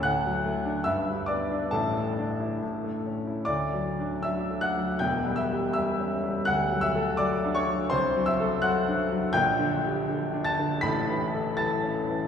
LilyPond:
<<
  \new Staff \with { instrumentName = "Grand piano" } { \time 2/4 \key d \major \tempo 4 = 81 <fis'' fis'''>4 <e'' e'''>8 <d'' d'''>8 | <a' a''>4 r4 | <d'' d'''>4 <e'' e'''>8 <fis'' fis'''>8 | <g'' g'''>8 <e'' e'''>8 <e'' e'''>4 |
<fis'' fis'''>8 <e'' e'''>8 <d'' d'''>8 <cis'' cis'''>8 | <c'' c'''>8 <e'' e'''>8 <fis'' fis'''>4 | <g'' g'''>4. <a'' a'''>8 | <b'' b'''>4 <a'' a'''>8 r8 | }
  \new Staff \with { instrumentName = "Grand piano" } { \clef bass \time 2/4 \key d \major d,16 fis16 a16 d'16 g,16 g16 b16 d'16 | <a,, a,>16 a16 d'16 e'16 a,16 a16 cis'16 e'16 | \tuplet 3/2 { d,8 fis8 d'8 fis8 a8 fis8 } | \tuplet 3/2 { <e,, e,>8 g8 g'8 g8 cis'8 g8 } |
\tuplet 3/2 { d,8 fis8 a'8 fis8 d'8 fis8 } | \tuplet 3/2 { c,8 fis8 a'8 fis8 d'8 fis8 } | \tuplet 3/2 { <bes,, bes,>8 d8 g'8 d8 d'8 d8 } | \tuplet 3/2 { <a,, a,>8 e8 a'8 e8 cis'8 e8 } | }
>>